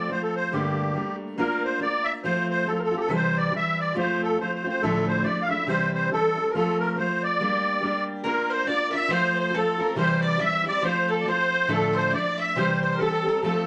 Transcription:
Already playing: D5
0.09 F3 A3 C4 F4 C5
0.23 A4
0.36 C5
0.52 G2 D3 G3 A3 A#3 D4 G4
0.94 G3 A3 A#3 D4
1.38 A#3 D4 F4 A#4
1.64 C5
1.80 A#3 D4 F4 A#4 D5
2.04 E5
2.24 F3 A3 C4 F4 C5
2.50 C5
2.66 F3 A3 C4 F4 A4
2.79 A#4
2.84 A4
2.91 A3 C4 F4
2.97 G4 A4
3.08 C3 E3 G3 C4 E4
3.15 C5
3.38 D5
3.52 E3 G3 C4 E4
3.56 E5
3.80 D5
3.94 F3 A3 C4 F4
3.98 C5
4.23 A4
4.38 F3 A3 C4 C5
4.42 F4
4.54 C5
4.64 A3 C4 F4
4.68 C5
4.82 D2 A2 F3 A3 D4 E4 A4
5.08 C5
5.24 F3 A3 D4 E4 D5
5.42 F5
5.48 A3 D4 E4 E5
5.52 F3
5.66 C3 E3 G3 C4 E4 C5
5.94 C5
6.11 E3 G3 C4 E4 A4
6.36 G3 C4 E4
6.50 A#4
6.54 F3 A3 C4 F4 A4
6.79 A#4
6.97 F3 A3 C4 F4 C5
7.24 D5
7.40 G3 A#3 D4 G4
7.82 G3 A#3 D4 G4
8.24 A#3 D4 F4 A#4
8.49 C5
8.66 A#3 D4 F4 A#4 D5
8.71 D5
8.90 D4 F4 A#4 E5
8.95 E5
9.08 F3 A3 C4 F4 C5
9.13 C5
9.34 C5
9.39 C5
9.52 F3 A3 C4 F4 A4
9.57 A4
9.78 A3 C4 F4 A#4
9.95 C3 E3 G3 C4 E4 C5
10.21 D5
10.26 D5
10.39 E3 G3 C4 E4 E5
10.43 E5
10.64 G3 C4 E4 D5
10.68 D5
10.82 F3 A3 C4 F4 C5
11.08 A4
11.20 D5
11.25 F3 A3 C4 F4 C5
11.41 C5
11.54 C5
11.67 D2 A2 F3 A3 D4 E4 A4
11.72 A4
11.93 C5
11.99 C5
12.11 F3 A3 D4 D5
12.15 E4
12.38 E5
12.56 C3 E3 G3 C4 G4 C5
12.83 C5
12.94 A#4
12.99 E3 G3 C4 G4 A4
13.08 A4
13.14 A4
13.24 G3 C4 G4
13.29 A#4
13.43 F3 A3 C4 F4 A4

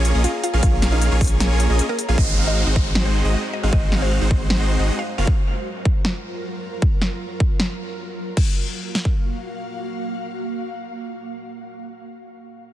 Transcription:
Already playing: A#1 A#3 C#4 F4 G#4 C#5 A#5
0.05 closed hi-hat
0.15 A#1 A#3 C#4 F4 G#4 D#5
0.24 F4 F5, closed hi-hat
0.43 F4 F5, closed hi-hat
0.53 A#1 A#3 C#4 F4 G#4 F5
0.63 A#1 A#3 C#4 F4 G#4 C#5 F5, kick, closed hi-hat
0.82 A#1 A#3 C#4 F4 G#4 F5, snare, closed hi-hat
0.92 D#4 D#5
1.02 closed hi-hat
1.12 A#1 A#3 C#4 F4 G#4 C#5
1.21 kick, closed hi-hat, open hi-hat
1.27 closed hi-hat
1.40 A#1 A#3 C#4 F4 G#4 C#5, snare, closed hi-hat
1.60 closed hi-hat
1.70 A#1 A#3 C#4 F4 G#4 D#5
1.79 closed hi-hat
1.89 A#3 A#4
1.99 closed hi-hat
2.08 A#1 A#3 C#4 F4 G#4 F5
2.18 G#1 G#3 C4 D#4 F#4 C5 D#5, kick, downlifter
2.37 G#1 G#3 C4 D#4 F#4 F5
2.47 D#5
2.67 G#1 G#3 C4 D#4 F#4 C5
2.76 D#5, kick
2.95 G#1 G#3 C4 D#4 F#4 C5, snare
3.06 C5
3.25 G#1 G#3 C4 D#4 F#4 D#5
3.34 D#5
3.53 D#5
3.63 G#1 G#3 C4 D#4 F#4 F5
3.73 G#1 C4 D#4 F#4 D#5, kick
3.92 G#1 G#3 C4 D#4 F#4 F5, snare
4.02 C5
4.21 G#1 G#3 C4 D#4 F#4 C5
4.31 kick
4.50 G#1 G#3 C4 D#4 F#4 C5, snare
4.79 G#1 G#3 C4 D#4 F#4 D#5
4.99 F5
5.08 F#3 F4 A#4
5.18 F#1 A#3 C#4 F4 F#4 F5
5.27 kick
5.85 kick
6.05 snare
6.82 kick
7.02 snare
7.40 kick
7.60 snare
8.37 A#3 F#4 F5, kick, crash
8.95 snare
9.05 kick

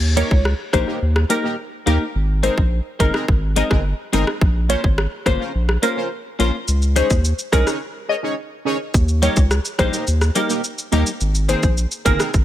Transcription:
Already playing: D#2
0.16 A#3 D#4 G4 A#4 C#5, closed hi-hat
0.31 C#2, kick
0.45 cross-stick
0.73 A#1 A#3 D#4 G4 A#4 C5, kick, cross-stick, closed hi-hat
0.87 A#3 D#4 G4 A#4
1.02 D#2
1.16 cross-stick
1.29 A#3 D#4 G4 A#4, closed hi-hat
1.44 A#3 D#4 G4 A#4
1.86 D#2 A#3 D#4 G4 A#4, closed hi-hat
2.15 G#1
2.43 G#3 C4 D#4 G#4 A#4 C5, closed hi-hat
2.58 A#1, kick
2.99 G1 G#3 C4 D#4 G#4 A#4, kick, closed hi-hat
3.13 C4 D#4 G#4 A#4, cross-stick
3.28 G#1, kick
3.56 G#3 C4 D#4 G#4 A#4 D#5, closed hi-hat
3.70 G1 C4 D#4 G#4 A#4, kick, cross-stick
4.13 G1 G#3 C4 D#4 G#4 A#4, closed hi-hat
4.27 cross-stick
4.41 A#1, kick
4.69 A#3 C#4 F4 A#4 C5 C#5, closed hi-hat
4.84 G#1, kick
4.98 cross-stick
5.26 G1 A#3 C#4 F4 A#4 C5, kick, cross-stick, closed hi-hat
5.40 C#4 F4 A#4 C5
5.55 A#1
5.69 cross-stick
5.82 A#3 C#4 F4 A#4 C5, closed hi-hat
5.96 C#4 F4 A#4 C5
6.39 A#1 A#3 C#4 F4 A#4 C5, closed hi-hat
6.68 C#2, shaker
6.82 shaker
6.95 G#3 C#4 D#4 G#4 C5 C#5, closed hi-hat, shaker
7.10 D#2, kick, shaker
7.25 shaker
7.39 shaker
7.52 C2 G#3 C#4 D#4 G#4 A#4 C#5, kick, cross-stick, closed hi-hat, shaker
7.66 C#4 D#4 G#4 C#5, cross-stick, shaker
8.09 G#4 C#5 D#5
8.23 C#4 D#4 G#4 C#5
8.65 C#4 D#4 G#4 C#5
8.94 D#2, kick, shaker
9.08 shaker
9.22 G3 A#3 D#4 G4 A#4 C#5, closed hi-hat, shaker
9.36 C#2, kick, shaker
9.51 cross-stick, shaker
9.65 shaker
9.78 A#1 G3 A#3 D#4 G4 A#4 C5, kick, cross-stick, closed hi-hat, shaker
9.93 A#3 D#4 G4 A#4, shaker
10.07 D#2, shaker
10.21 cross-stick, shaker
10.35 G3 A#3 D#4 G4 A#4, closed hi-hat, shaker
10.49 A#3 D#4 G4 A#4, shaker
10.64 shaker
10.78 shaker
10.92 D#2 G3 A#3 D#4 G4 A#4, closed hi-hat, shaker
11.06 shaker
11.21 G#1, shaker
11.35 shaker
11.48 D#3 A#3 C4 D#4 G#4 A#4 C5, closed hi-hat, shaker
11.63 A#1, kick, shaker
11.77 shaker
11.91 shaker
12.05 G1 D#3 A#3 C4 G#4 A#4, kick, closed hi-hat, shaker
12.19 C4 D#4 G#4 A#4, cross-stick, shaker
12.34 G#1, kick, shaker

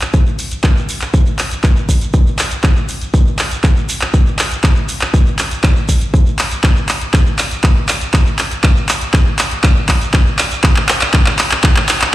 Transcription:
0.01 clap, closed hi-hat, shekere
0.14 kick, closed hi-hat, shekere
0.26 shekere
0.39 open hi-hat, shekere
0.51 closed hi-hat, shekere
0.64 kick, clap, closed hi-hat, shekere
0.77 shekere
0.89 open hi-hat, shekere
1.01 clap, closed hi-hat, shekere
1.14 kick, closed hi-hat, shekere
1.26 shekere
1.38 clap, open hi-hat, shekere
1.51 closed hi-hat, shekere
1.64 kick, clap, closed hi-hat, shekere
1.76 shekere
1.89 kick, open hi-hat, shekere
2.01 closed hi-hat, shekere
2.13 kick, closed hi-hat, shekere
2.27 shekere
2.39 clap, open hi-hat, shekere
2.51 closed hi-hat, shekere
2.64 kick, clap, closed hi-hat, shekere
2.76 shekere
2.89 open hi-hat, shekere
3.01 closed hi-hat, shekere
3.14 kick, closed hi-hat, shekere
3.27 shekere
3.39 clap, open hi-hat, shekere
3.51 closed hi-hat, shekere
3.64 kick, clap, closed hi-hat, shekere
3.76 shekere
3.89 open hi-hat, shekere
4.01 clap, closed hi-hat, shekere
4.14 kick, closed hi-hat, shekere
4.27 shekere
4.39 clap, open hi-hat, shekere
4.52 closed hi-hat, shekere
4.64 kick, clap, closed hi-hat, shekere
4.76 shekere
4.89 open hi-hat, shekere
5.01 clap, closed hi-hat, shekere
5.14 kick, closed hi-hat, shekere
5.26 shekere
5.39 clap, open hi-hat, shekere
5.51 closed hi-hat, shekere
5.64 kick, clap, closed hi-hat, shekere
5.76 shekere
5.89 kick, open hi-hat, shekere
6.01 closed hi-hat, shekere
6.14 kick, closed hi-hat, shekere
6.26 shekere
6.39 clap, open hi-hat, shekere
6.51 closed hi-hat, shekere
6.63 kick, clap, closed hi-hat, shekere
6.76 shekere
6.89 clap, open hi-hat, shekere
7.01 closed hi-hat, shekere
7.14 kick, clap, closed hi-hat, shekere
7.26 shekere
7.38 clap, open hi-hat, shekere
7.51 closed hi-hat, shekere
7.64 kick, clap, closed hi-hat, shekere
7.76 shekere
7.88 clap, open hi-hat, shekere
8.01 closed hi-hat, shekere
8.14 kick, clap, closed hi-hat, shekere
8.26 shekere
8.38 clap, open hi-hat, shekere
8.51 closed hi-hat, shekere
8.64 kick, clap, closed hi-hat, shekere
8.77 shekere
8.89 clap, open hi-hat, shekere
9.01 closed hi-hat, shekere
9.14 kick, clap, closed hi-hat, shekere
9.26 shekere
9.39 clap, open hi-hat, shekere
9.51 closed hi-hat, shekere
9.64 kick, clap, closed hi-hat, shekere
9.76 shekere
9.89 kick, clap, open hi-hat, shekere
10.01 closed hi-hat, shekere
10.13 kick, clap, closed hi-hat, shekere
10.26 shekere
10.39 clap, open hi-hat, shekere
10.51 closed hi-hat, shekere
10.64 kick, clap, closed hi-hat, shekere
10.76 clap, shekere
10.89 clap, open hi-hat, shekere
11.01 clap, closed hi-hat, shekere
11.13 kick, clap, closed hi-hat, shekere
11.26 clap, shekere
11.38 clap, open hi-hat, shekere
11.51 clap, closed hi-hat, shekere
11.64 kick, clap, closed hi-hat, shekere
11.76 clap, shekere
11.88 clap, open hi-hat, shekere
12.02 clap, closed hi-hat, shekere

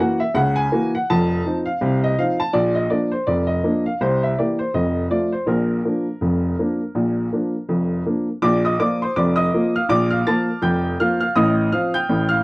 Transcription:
0.00 E3 A#3 F#4 F#5
0.20 E5
0.34 C#2 C#3 F#5
0.56 G#5
0.72 E3 A#3 F#4
0.95 F#5
1.10 F1 F2 A5
1.46 F3 C4 D#4
1.66 F5
1.81 C2 C3
2.04 D#5
2.19 F3 C4 D#4 F5
2.40 A5
2.53 A#1 A#2 D5
2.75 D#5
2.90 F3 A#3 D4 D5
3.12 C5
3.27 F1 F2 D5
3.47 D#5
3.64 F3 A#3 D4
3.86 F5
4.01 C2 C3 C5
4.23 E5
4.38 E3 A#3 G4 D5
4.59 C5
4.74 F1 F2 D#5
5.10 F3 A3 F4 D5
5.32 C5
5.46 A#1 A#2 A#4
5.85 F3 A#3 D4
6.21 F1 F2
6.59 F3 A#3 D4
6.95 A#1 A#2
7.33 F3 A#3 D4
7.69 F1 F2
8.06 F3 A#3 D4
8.42 A#1 A#2 D5 D6
8.65 D#5 D#6
8.80 F3 A#3 F4 D5 D6
9.02 C5 C6
9.16 F1 F2 D5 D6
9.36 D#5 D#6
9.54 F3 A#3 F4
9.76 F5 F6
9.89 A#1 A#2 D5 D6
10.10 F5 F6
10.26 F3 A#3 F4 A5 A6
10.62 F1 F2 G5 G6
11.00 F3 A#3 F4 F5 F6
11.21 F5 F6
11.36 A1 A2 D#5 D#6
11.72 F3 C4 F4 F5 F6
11.94 G5 G6
12.09 A1 A2
12.29 F5 F6

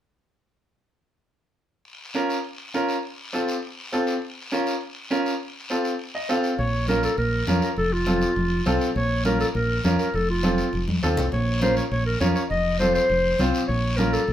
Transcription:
1.85 long guiro
2.14 C#4 F4 A#4, short guiro
2.30 short guiro
2.44 long guiro
2.74 C#4 F4 A#4, short guiro
2.89 short guiro
3.03 long guiro
3.33 C4 F4 A4, short guiro
3.48 short guiro
3.63 long guiro
3.92 C4 F4 A4, short guiro
4.07 short guiro
4.22 long guiro
4.52 C#4 F4 A#4, short guiro
4.66 short guiro
4.81 long guiro
5.11 C#4 F4 A#4, short guiro
5.26 short guiro
5.40 long guiro
5.70 C4 F4 A4, short guiro
5.85 short guiro
5.99 long guiro
6.15 D#5
6.29 C4 F4 A4 F5, short guiro
6.44 short guiro
6.58 A#1 C#5, high conga, long guiro
6.88 C#4 F4 A#4, high conga, short guiro
7.03 A4, short guiro
7.18 A#1 A#4, high conga, long guiro
7.47 F2 C#4 F4 A#4, high conga, short guiro
7.62 A#4, short guiro
7.77 F1 A4, high conga, long guiro
7.93 F4
8.06 C4 F4 A4, high conga, short guiro
8.21 short guiro
8.36 F1, high conga, long guiro
8.66 C2 C4 F4 A4, high conga, short guiro
8.81 short guiro
8.96 A#1 C#5, high conga, long guiro
9.25 C#4 F4 A#4, high conga, short guiro
9.40 A4, short guiro
9.55 A#1 A#4, high conga, long guiro
9.84 F2 C#4 F4 A#4, high conga, short guiro
9.99 A#4, short guiro
10.14 F1 A4, high conga, long guiro
10.30 F4
10.43 C4 F4 A4, high conga, short guiro
10.58 short guiro
10.73 F1, high conga, long guiro
10.88 F2, high conga
11.03 D#2 C4 F4 A4, short guiro
11.17 C2, low conga, short guiro
11.32 A#1 C#5, high conga, long guiro
11.62 C#4 F4 A#4 C5, high conga, short guiro
11.77 C#5, short guiro
11.91 A#1 C#5, high conga, long guiro
12.06 A#4
12.20 F2 C#4 F4 A#4 C#5, high conga, short guiro
12.35 C#5, short guiro
12.50 F1 D#5, high conga, long guiro
12.80 C4 F4 A4 C5, high conga, short guiro
12.94 C5, short guiro
13.10 F1, high conga, long guiro
13.39 C2 C4 F4 C5, high conga, short guiro
13.54 short guiro
13.67 A#1 C#5, high conga, long guiro
13.97 C#4 F4 A#4, high conga, short guiro
14.13 A4, short guiro
14.28 A#1, high conga, long guiro

